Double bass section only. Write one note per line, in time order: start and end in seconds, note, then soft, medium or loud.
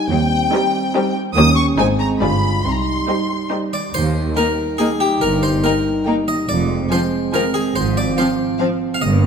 0.10 0.44 D#2 medium
1.37 1.70 D#2 medium
1.79 2.13 G#1 medium
2.22 2.56 G1 medium
2.65 2.99 C2 medium
3.94 4.29 D#2 medium
5.22 5.57 G1 medium
6.49 6.84 F1 medium
7.76 8.11 G#1 medium
9.02 9.27 G1 medium